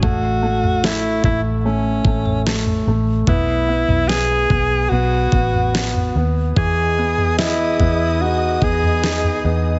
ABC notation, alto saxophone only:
X:1
M:4/4
L:1/8
Q:1/4=73
K:E
V:1 name="Alto saxophone"
F2 E E C2 z2 | E2 G2 F3 z | G2 E2 F G2 z |]